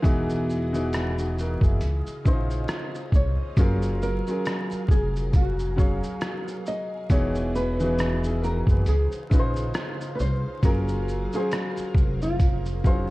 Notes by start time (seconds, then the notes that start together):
Already playing: G#4 A#4
0.02 E1 E3 B3 D#4 F#4 G#4 D#5, kick, closed hi-hat, shaker
0.30 shaker
0.50 shaker
0.73 E3 B3 D#4 F#4 G#4, shaker
0.93 cross-stick, closed hi-hat, shaker
1.19 D#4 F#4, shaker
1.39 F#4 A#4, shaker
1.61 F#1 E4 G#4, kick, shaker
1.81 C#2 C#3 C#4 F5, closed hi-hat, shaker
2.07 muted upright bass stroke, shaker
2.25 A#1 C#3 C#4 D#4 E4 C5, kick, shaker
2.33 F4
2.51 shaker
2.68 cross-stick, closed hi-hat, shaker
2.95 shaker
3.12 C2 C#5, kick, shaker
3.57 F#1 F#3 C#4 F4 G#4 A#4 C5, kick, closed hi-hat, shaker
3.82 shaker
4.02 A#4, shaker
4.27 F#3 C#4 F4 G#4 A#4, shaker
4.46 cross-stick, closed hi-hat, shaker
4.71 muted upright bass stroke, shaker
4.88 F1 G#4, kick, shaker
5.16 shaker
5.33 F#4, kick, closed hi-hat, shaker
5.59 shaker
5.76 F#3 C#4 G#4 C#5 F5, kick, shaker
6.03 shaker
6.21 cross-stick, closed hi-hat, shaker
6.48 shaker
6.66 D#5, shaker
7.10 E1 E3 B3 D#4 F#4 G#4 C#5, kick, closed hi-hat, shaker
7.35 shaker
7.55 B4, shaker
7.80 E3 B3 D#4 F#4 G#4, shaker
7.98 D#4 F#4, cross-stick, closed hi-hat, shaker
8.24 E4 G#4, shaker
8.42 F#4 A#4, shaker
8.67 F#1 B4, kick, shaker
8.71 G#4
8.86 C#2 C#3 D#4 G#4 C5 F5, closed hi-hat, shaker
9.12 shaker
9.30 A#1 C#3 C#4 D#4 F4 B4, kick, shaker
9.39 C5
9.56 shaker
9.74 cross-stick, closed hi-hat, shaker
10.01 shaker
10.15 B4
10.20 C2 C5, shaker
10.63 F#1 F#3 C#4 F4 G#4 A#4, kick, closed hi-hat, shaker
10.88 shaker
11.08 shaker
11.33 F#3 C#4 G#4 C5 F5, shaker
11.52 F#4, cross-stick, closed hi-hat, shaker
11.77 muted upright bass stroke, shaker
11.95 F1, kick, shaker
12.22 F4, shaker
12.40 kick, closed hi-hat, shaker
12.66 shaker
12.84 F#3 C#4 G#4 C5 F5, kick, shaker
12.98 D#4